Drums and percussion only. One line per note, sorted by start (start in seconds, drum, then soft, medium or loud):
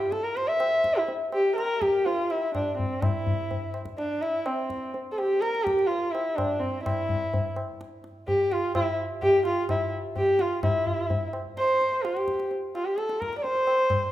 0.12 tabla te medium
0.37 tabla te medium
0.60 tabla na medium
0.84 tabla ke medium
1.08 tabla tin medium
1.32 tabla na medium
1.58 tabla na medium
1.82 tabla ke medium
2.06 tabla tin medium
2.30 tabla na medium
2.55 tabla na medium
2.55 tabla ge medium
2.79 tabla ge medium
3.02 tabla na medium
3.02 tabla ge medium
3.27 tabla ge medium
3.51 tabla tin medium
3.51 tabla ge medium
3.74 tabla na medium
3.85 tabla ke medium
3.98 tabla te medium
4.23 tabla te medium
4.46 tabla na medium
4.70 tabla ke medium
4.94 tabla tin medium
5.18 tabla na medium
5.42 tabla te medium
5.55 tabla te medium
5.67 tabla ke medium
5.79 tabla te medium
5.91 tabla tin medium
6.15 tabla na medium
6.38 tabla na medium
6.38 tabla ge medium
6.63 tabla ge medium
6.86 tabla na loud
6.86 tabla ge medium
7.09 tabla ge medium
7.34 tabla tin medium
7.34 tabla ge medium
7.56 tabla na medium
7.81 tabla te medium
8.04 tabla te medium
8.28 tabla tin medium
8.28 tabla ge medium
8.52 tabla te medium
8.75 tabla na medium
8.75 tabla ge medium
9.22 tabla tin medium
9.22 tabla ge medium
9.45 tabla te medium
9.69 tabla na medium
9.69 tabla ge medium
10.16 tabla tin medium
10.16 tabla ge medium
10.39 tabla te medium
10.63 tabla na loud
10.63 tabla ge medium
10.86 tabla ge medium
11.10 tabla tin medium
11.10 tabla ge medium
11.33 tabla na medium
11.57 tabla te medium
11.81 tabla te medium
12.05 tabla te medium
12.17 tabla te medium
12.28 tabla ke medium
12.39 tabla te medium
12.51 tabla tin medium
12.75 tabla na medium
12.98 tabla te medium
13.09 tabla te medium
13.22 tabla ke medium
13.33 tabla te medium
13.44 tabla tin medium
13.67 tabla na medium
13.90 tabla na medium
13.90 tabla ge medium